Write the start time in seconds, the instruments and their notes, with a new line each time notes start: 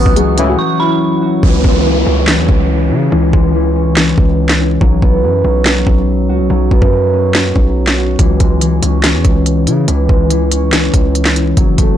Already playing: harp E3 F#3 A3 C#4 E4 F#4, grand piano B3 B4, ambient pad F#4 E5 F#5 C#6, synth bell D#6
0.06 808-style bass C#2, kick
0.16 harp F#3, grand piano G#3 G#4, closed hi-hat
0.37 brass ensemble A2 C#3 E3, harp C#4, closed hi-hat
0.49 grand piano F#3 F#4
0.58 harp F#3, synth bell C#6
0.79 grand piano E3 E4, synth bell B5
1.22 harp F#4
1.43 808-style bass C#2, harp E3, kick, downlifter
1.64 808-style bass C#2, harp G#3, kick
1.85 harp E3
2.06 808-style bass C#2, harp C#4
2.27 harp E3, snare, clap
2.38 808-style bass E2
2.49 808-style bass C#2, kick
2.91 808-style bass C#3, harp E4
3.12 808-style bass C#2, harp E3
3.33 808-style bass C#2, harp G#3, kick
3.54 harp E3
3.76 harp C#4
3.96 harp E3, snare, clap
4.18 808-style bass C#2, kick
4.49 snare, clap
4.60 harp E4
4.81 808-style bass B1, harp F#3, kick
5.02 808-style bass B1, harp B3, kick
5.23 808-style bass F#2, harp F#3
5.44 808-style bass B1, harp C#4
5.65 harp F#3, snare, clap
5.87 808-style bass B1, kick
6.29 808-style bass C#2, harp F#4
6.39 808-style bass B1
6.50 808-style bass B1, harp F#3
6.71 808-style bass B1, harp B3, kick
6.82 808-style bass F#2, kick
6.92 harp F#3
7.13 harp C#4
7.34 harp F#3, snare, clap
7.56 808-style bass B1, kick
7.87 snare, clap
7.98 harp F#4
8.19 808-style bass C#2, harp E3, kick, closed hi-hat
8.40 808-style bass C#2, harp G#3, kick, closed hi-hat
8.61 harp E3, closed hi-hat
8.82 808-style bass C#2, harp C#4, closed hi-hat
9.03 harp E3, snare, clap, closed hi-hat
9.14 808-style bass E2
9.25 808-style bass C#2, kick, closed hi-hat
9.46 closed hi-hat
9.67 808-style bass C#3, harp E4, closed hi-hat
9.88 808-style bass C#2, harp E3, closed hi-hat
10.09 808-style bass C#2, harp G#3, kick
10.30 harp E3, closed hi-hat
10.52 harp C#4, closed hi-hat
10.72 harp E3, snare, clap, closed hi-hat
10.94 808-style bass C#2, kick, closed hi-hat
11.15 closed hi-hat
11.25 snare, clap
11.36 harp E4, closed hi-hat
11.57 808-style bass F#1, harp F#3, kick, closed hi-hat
11.78 808-style bass F#1, harp A3, kick, closed hi-hat